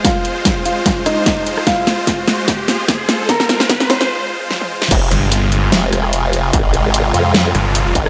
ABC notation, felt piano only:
X:1
M:4/4
L:1/8
Q:"Swing 16ths" 1/4=148
K:Fm
V:1 name="Felt piano"
[Ff]3 [Ff] z [Ee]3 | [Ff]4 z4 | [Bb]3 [cc'] z4 | z8 |
z8 |]